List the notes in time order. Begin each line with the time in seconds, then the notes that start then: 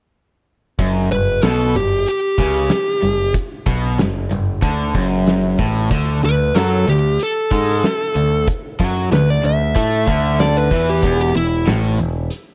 0.79 F#1 F#2, kick, closed hi-hat
1.11 F#1 G2 B4, closed hi-hat
1.42 B1 B2 A4, snare, closed hi-hat
1.75 F#1 G2 G4, closed hi-hat
2.06 G4, closed hi-hat
2.38 C#2 C#3, kick, closed hi-hat
2.69 muted overdriven electric guitar stroke, snare, closed hi-hat
3.02 F#1 G2, closed hi-hat
3.34 kick, closed hi-hat
3.66 B1 B2, kick, closed hi-hat
3.98 F#1 G2, snare, closed hi-hat
4.31 F#1 G2, closed hi-hat
4.62 D2 D3, kick, closed hi-hat
4.94 F#1 F#2, kick, closed hi-hat
5.27 snare, closed hi-hat
5.59 A1 A2, kick, closed hi-hat
5.91 D2 D3, kick, closed hi-hat
6.23 D2 D3 B4, closed hi-hat
6.55 F#2 F#3 A4, snare, closed hi-hat
6.87 D2 D3 G4, snare, closed hi-hat
7.19 A4, closed hi-hat
7.51 G#2 G#3, kick, closed hi-hat
7.83 muted picked electric bass stroke, muted overdriven electric guitar stroke, snare, closed hi-hat
8.16 D2 D3, closed hi-hat
8.48 kick, closed hi-hat
8.80 F#2 F#3, kick, closed hi-hat
9.12 D2 D3 B4, snare, closed hi-hat
9.30 D5
9.44 D2 D3 E5, closed hi-hat
9.76 A2 A3, kick, closed hi-hat
10.07 D2 D3, kick, closed hi-hat
10.39 D5, snare, closed hi-hat
10.57 B4
10.71 E2 E3, kick, closed hi-hat
10.90 G4
11.03 E1 E2, kick, closed hi-hat
11.21 G4
11.34 E1 E2 E4, closed hi-hat
11.67 A1 A2, snare, closed hi-hat
11.98 E1 E2, closed hi-hat
12.30 closed hi-hat